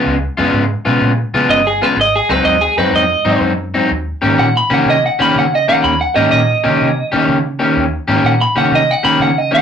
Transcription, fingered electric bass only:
X:1
M:4/4
L:1/8
Q:"Swing" 1/4=125
K:Ebdor
V:1 name="Fingered electric bass" clef=bass
D,, G,, A,, _C, B,, D, =G,,,2 | A,,, D,, E,, G,, F,, A,, G,,2 | E,, A,, B,, D, C, E, D,2 | E,, A,, B,, D, C, E, D,2 |
E,, A,, B,, D, C, E, D,2 |]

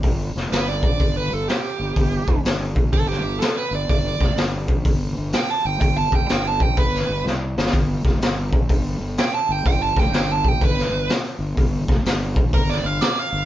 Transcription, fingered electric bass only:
X:1
M:4/4
L:1/8
Q:"Swing" 1/4=125
K:G
V:1 name="Fingered electric bass" clef=bass
G,,, =F,,, G,,, _B,,, G,,, G,,, z G,,, | G,,, =F,,, G,,, _B,,, G,,, G,,, z G,,, | G,,, =F,,, G,,, _B,,, G,,, G,,, z G,,, | G,,, =F,,, G,,, _B,,, G,,, G,,, C,, G,,, |
G,,, =F,,, G,,, _B,,, G,,, G,,, z G,,, | G,,, =F,,, G,,, _B,,, G,,, G,,, z G,,, | G,,, =F,,, G,,, _B,,, G,,, G,,, z G,,, |]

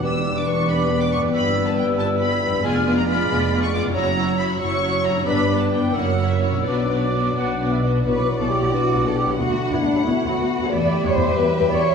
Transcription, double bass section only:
X:1
M:6/8
L:1/16
Q:3/8=91
K:Bm
V:1 name="Double bass section" clef=bass
E,,,12 | G,,,12 | =F,,,4- F,,, z F,,,4- F,,, z | F,,,4- F,,, z F,,,4- F,,, z |
G,,,4- G,,, z F,,,4- F,,, z | B,,,4- B,,, z B,,,4- B,,, z | B,,, B,,, z B,,, B,,, B,,, B,,, z B,,, B,,, z B,,, | D,, D,, z D,, D,, D,, D,, z D,, D,, z D,, |
E,, E,, z E,, E,, E,, E,, z E,, E,, z E,, |]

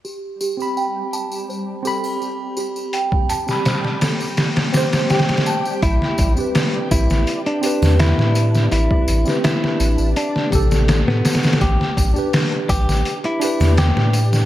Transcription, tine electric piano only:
X:1
M:4/4
L:1/16
Q:1/4=83
K:Am
V:1 name="Tine electric piano"
z3 [CGb]6- [CGb] [CGb]6- | [CGb]3 [CGb]6- [CGb] [CGc]6 | z3 [CGB]6- [CGB] [CGB]6- | [CGB]3 [CGB]6- [CGB] [C,GA]6 |
z3 [DGB]6- [DGB] [DGB]6 |]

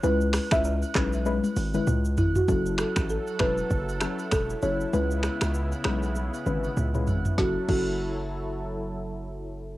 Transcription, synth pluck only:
X:1
M:4/4
L:1/16
Q:"Swing 16ths" 1/4=98
K:F#m
V:1 name="Synth pluck"
[G,CEB]3 [G,CEB]3 [G,CEB]2 [G,CEB] z2 [G,CEB] z4 | [F,CEA]4 z2 [F,CEA] z3 [F,CEA] z3 [F,CEA] z | [G,CEB]4 z2 [G,CEB] z3 [G,CEB] z2 [G,CEB] z2 | [F,CEA] z [F,CEA]12- [F,CEA]2 |]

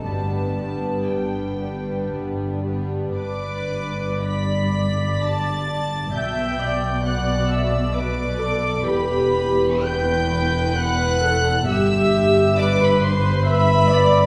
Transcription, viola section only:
X:1
M:3/4
L:1/8
Q:1/4=65
K:G
V:1 name="Viola section"
[G,B,] [G,B,]2 [G,B,]2 [G,B,] | B2 d4 | e d d2 B A | G2 B2 B A |
G2 B2 e d |]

